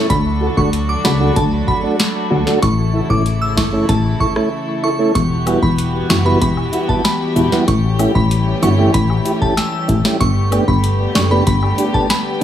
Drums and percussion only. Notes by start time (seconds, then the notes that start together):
0.10 kick, closed hi-hat
0.57 kick
0.73 closed hi-hat
1.05 snare
1.36 kick, closed hi-hat
1.68 kick
2.00 snare, closed hi-hat
2.47 snare
2.63 kick, closed hi-hat
3.10 kick
3.26 closed hi-hat
3.57 kick, snare
3.89 kick, closed hi-hat
4.20 kick
4.36 cross-stick
5.15 kick, closed hi-hat
5.47 closed hi-hat, cabasa, high woodblock
5.62 kick
5.78 closed hi-hat
6.10 snare, closed hi-hat, cabasa, high woodblock
6.42 kick, closed hi-hat
6.57 high woodblock
6.73 closed hi-hat, cabasa
6.89 kick
7.05 snare, closed hi-hat, high woodblock
7.36 closed hi-hat, cabasa
7.52 snare
7.68 kick, closed hi-hat
7.99 closed hi-hat, cabasa, high woodblock
8.15 kick
8.31 closed hi-hat
8.63 closed hi-hat, cabasa, high woodblock
8.94 kick, closed hi-hat
9.10 high woodblock
9.25 closed hi-hat, cabasa
9.41 kick
9.57 snare, closed hi-hat, high woodblock
9.89 kick, closed hi-hat, cabasa
10.05 snare
10.20 kick, closed hi-hat
10.52 closed hi-hat, cabasa, high woodblock
10.68 kick
10.84 closed hi-hat
11.15 snare, closed hi-hat, cabasa, high woodblock
11.47 kick, closed hi-hat
11.63 high woodblock
11.78 closed hi-hat, cabasa
11.94 kick
12.10 snare, closed hi-hat, high woodblock